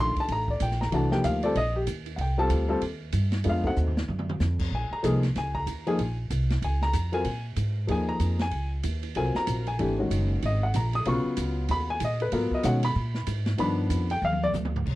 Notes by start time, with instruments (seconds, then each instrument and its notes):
Already playing: upright bass A#1, grand piano D#3 A3 D4 F4
0.00 grand piano C6
0.16 grand piano A5, muted upright bass stroke, kick, ride
0.28 upright bass A1, grand piano A#5, ride
0.48 grand piano D5, kick
0.60 upright bass A#1, grand piano G5, hi-hat pedal, ride
0.71 snare
0.81 grand piano A#5, snare
0.92 upright bass C2, grand piano E3 A3 D4 F#4 A5, ride
1.11 grand piano F3 A#3 D#4 G4 G5, snare
1.24 upright bass D2, grand piano F5, hi-hat pedal, ride
1.43 grand piano G3 C4 F4 A4 D5, ride
1.55 upright bass A#1, grand piano D#5, ride
1.76 grand piano G4
1.87 upright bass D#2, hi-hat pedal, ride
2.06 ride
2.16 upright bass C2, grand piano F#5, ride
2.21 grand piano G5
2.38 grand piano G3 C4 F4 A4 A5
2.50 upright bass D2, hi-hat pedal, ride
2.68 grand piano G3 C4 F4 A4
2.81 upright bass D#2, ride
3.12 upright bass G2, hi-hat pedal, ride
3.32 snare, ride
3.44 upright bass F2, grand piano G#3 B3 D4 F4, ride
3.49 grand piano F5
3.64 grand piano A3 C4 D#4 F#4 F#5, kick
3.76 upright bass D#2, hi-hat pedal
3.87 floor tom
3.97 snare
4.08 upright bass F#2, mid tom
4.19 mid tom
4.29 mid tom
4.40 upright bass F2, snare, hi-hat pedal
4.59 kick, crash
4.71 upright bass A#1, grand piano G#5
4.91 grand piano A#5, muted upright bass stroke
5.03 upright bass C2, grand piano F3 A#3 D#4 G#4, hi-hat pedal, ride
5.23 snare, ride
5.35 upright bass C#2, grand piano G#5, snare, ride
5.55 grand piano A#5, kick
5.66 upright bass D#2, hi-hat pedal, ride
5.87 grand piano F3 A#3 D#4 G#4 G#5, ride
5.99 upright bass A#1, ride
6.30 upright bass C2, hi-hat pedal, ride
6.50 snare, ride
6.62 upright bass C#2, grand piano G#5, ride
6.82 grand piano A#5, snare
6.93 upright bass F2, hi-hat pedal, ride
7.12 grand piano F#3 C4 F4 A#4 G#5, ride
7.25 upright bass A#2, ride
7.56 upright bass G#2, hi-hat pedal, ride
7.87 upright bass D#2, grand piano F3 A#3 D#4 G#4, ride
7.91 grand piano G#5
8.09 grand piano A#5
8.20 upright bass F2, hi-hat pedal, ride
8.39 grand piano G#5, snare, ride
8.51 upright bass C#2, ride
8.83 upright bass D#2, hi-hat pedal, ride
9.03 ride
9.15 upright bass C2, grand piano F#3 C4 F4 A#4 G#5, ride
9.35 grand piano A#5, snare
9.47 upright bass A#1, hi-hat pedal, ride
9.67 grand piano G#5, ride
9.79 upright bass G#1, grand piano E3 A3 D4 G4, ride
9.98 grand piano D#3 G#3 C#4 F#4
10.10 upright bass F#1, hi-hat pedal, ride
10.42 upright bass G#1, grand piano D#5, ride
10.63 grand piano F#5
10.74 upright bass A#1, grand piano A#5, hi-hat pedal, ride
10.93 grand piano D#6, ride
11.05 upright bass B1, grand piano C#3 F#3 B3 F4 C#6, ride
11.24 muted upright bass stroke
11.37 upright bass C#2, hi-hat pedal, ride
11.68 upright bass D#2, grand piano B5, ride
11.90 grand piano G#5
12.00 upright bass A#2, hi-hat pedal, ride
12.05 grand piano D#5
12.20 grand piano B4, ride
12.32 upright bass G#2, grand piano F#3 B3 F4 A#4, ride
12.51 grand piano D#5, muted upright bass stroke, kick
12.63 upright bass B2, grand piano D#3 G#3 C#4 F#4 F#5, hi-hat pedal, ride
12.83 grand piano B5, ride
12.96 upright bass A#2
13.15 snare
13.27 upright bass G#2, hi-hat pedal, ride
13.46 snare, ride
13.58 upright bass G2, grand piano D#3 F3 B3 D4 B5, ride
13.90 upright bass F2, hi-hat pedal, ride
14.10 grand piano G5, ride
14.22 upright bass D#2, grand piano F5, high tom
14.32 high tom
14.43 grand piano D5, high tom
14.54 upright bass D2, hi-hat pedal, mid tom
14.65 mid tom
14.76 floor tom
14.86 upright bass C2, kick, crash